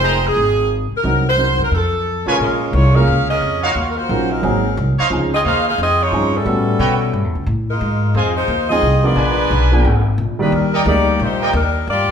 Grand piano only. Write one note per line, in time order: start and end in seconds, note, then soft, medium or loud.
0.00 0.64 G#3 medium
0.00 0.64 D#4 medium
0.00 0.65 A#4 medium
0.00 0.64 G5 medium
1.04 1.24 F#3 medium
1.04 1.24 C4 medium
1.04 1.24 D#4 medium
1.04 1.25 A#4 medium
1.37 1.72 F#3 soft
1.37 1.72 C4 soft
1.37 1.73 D#4 soft
1.37 1.73 A#4 soft
2.26 2.71 G#3 medium
2.26 2.71 C#4 medium
2.26 2.72 F4 medium
2.26 2.72 A#4 medium
2.94 3.06 G#3 medium
2.94 3.07 A#3 medium
2.94 3.07 C#4 medium
2.94 3.07 F4 medium
2.94 3.07 A#4 medium
4.09 4.41 F#3 medium
4.09 4.42 C#4 medium
4.09 4.42 D#4 soft
4.09 4.43 F4 medium
4.09 4.43 A#4 medium
4.42 4.62 F#3 medium
4.42 4.62 A#3 medium
4.42 4.63 C4 medium
4.42 4.63 D#4 medium
4.42 4.63 G#4 medium
5.10 5.30 F3 medium
5.10 5.30 C4 medium
5.10 5.30 C#4 medium
5.10 5.30 D#4 medium
5.10 5.31 G#4 medium
6.11 6.31 F3 medium
6.11 6.31 C4 medium
6.11 6.32 C#4 medium
6.11 6.32 D#4 medium
6.11 6.32 G#4 medium
6.45 7.40 G3 medium
6.45 7.40 B3 medium
6.45 7.40 C#4 medium
6.45 7.40 F#4 medium
6.45 7.41 A4 medium
8.70 8.82 F3 medium
8.70 8.82 G#3 medium
8.70 8.82 C4 medium
8.70 8.82 D#4 medium
8.70 8.83 G#4 medium
9.03 9.48 F3 medium
9.03 9.48 B3 medium
9.03 9.48 D4 medium
9.03 9.49 F4 medium
9.03 9.48 A#4 medium
9.71 9.83 F3 medium
9.71 9.83 A#3 medium
9.71 9.84 B3 medium
9.71 9.84 D4 medium
9.71 9.84 G#4 medium
10.39 10.83 D#3 medium
10.39 10.84 G3 medium
10.39 10.84 A#3 medium
10.39 10.84 G4 medium
10.39 10.84 D5 medium
10.86 11.37 G3 medium
10.86 11.38 A#3 medium
10.86 11.37 D#4 medium
10.86 11.38 G4 medium
10.86 11.38 D5 medium